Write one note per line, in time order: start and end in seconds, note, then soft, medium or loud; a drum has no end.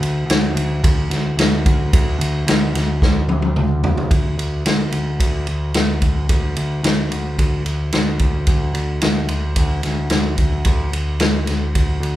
0.00 0.26 D2 medium
0.00 ride medium
0.26 0.53 D2 medium
0.26 ride medium
0.31 snare loud
0.54 0.81 D2 medium
0.54 ride medium
0.84 1.09 D2 loud
0.84 kick medium
0.84 ride medium
1.10 1.36 D2 medium
1.10 snare soft
1.10 ride medium
1.37 1.63 D2 medium
1.37 snare loud
1.37 ride medium
1.66 1.91 D2 medium
1.66 kick medium
1.66 ride medium
1.93 2.18 D2 medium
1.93 kick loud
1.93 ride medium
2.19 2.45 D2 medium
2.19 ride medium
2.47 2.73 D2 medium
2.47 snare loud
2.47 ride loud
2.75 3.00 D2 medium
2.75 snare soft
2.75 ride medium
3.02 3.28 D2 medium
3.02 kick medium
3.02 snare medium
3.29 3.55 D2 medium
3.29 high tom medium
3.42 high tom medium
3.56 3.82 D2 medium
3.56 mid tom medium
3.84 4.10 D2 medium
3.84 floor tom medium
3.97 floor tom medium
4.11 4.36 D2 medium
4.11 kick loud
4.11 ride medium
4.38 4.64 D2 medium
4.38 ride medium
4.66 4.91 D2 medium
4.66 snare loud
4.66 ride medium
4.92 5.19 D2 medium
4.92 ride medium
5.20 5.46 D2 medium
5.20 kick medium
5.20 ride medium
5.47 5.74 D2 medium
5.47 ride medium
5.74 6.00 D2 medium
5.74 snare loud
5.74 ride medium
6.02 6.28 D2 medium
6.02 kick medium
6.02 ride medium
6.29 6.55 D2 medium
6.29 kick medium
6.29 ride medium
6.56 6.83 D2 medium
6.56 ride medium
6.83 7.10 D2 medium
6.83 snare loud
6.83 ride medium
7.11 7.37 D2 medium
7.11 ride medium
7.39 7.64 D2 medium
7.39 kick medium
7.39 ride medium
7.65 7.91 D2 medium
7.65 ride medium
7.92 8.19 D2 medium
7.92 snare medium
7.92 ride medium
8.19 8.46 D2 medium
8.19 kick medium
8.19 ride medium
8.47 8.74 D2 medium
8.47 kick loud
8.47 ride medium
8.74 9.01 D2 medium
8.74 ride medium
9.01 9.28 D2 medium
9.01 snare loud
9.01 ride medium
9.28 9.55 D2 medium
9.28 ride medium
9.56 9.83 D2 medium
9.56 kick medium
9.56 ride medium
9.83 10.10 D2 medium
9.83 snare soft
9.83 ride medium
10.10 10.37 D2 medium
10.10 snare medium
10.10 ride medium
10.38 10.65 D2 medium
10.38 kick medium
10.38 ride medium
10.65 10.91 D2 medium
10.65 kick medium
10.65 ride medium
10.92 11.19 D2 medium
10.92 ride medium
11.20 11.46 D2 medium
11.20 snare loud
11.20 ride medium
11.46 11.74 D2 medium
11.46 snare soft
11.46 ride medium
11.75 12.00 D2 medium
11.75 kick medium
11.75 ride medium
12.00 12.16 D2 medium
12.00 ride medium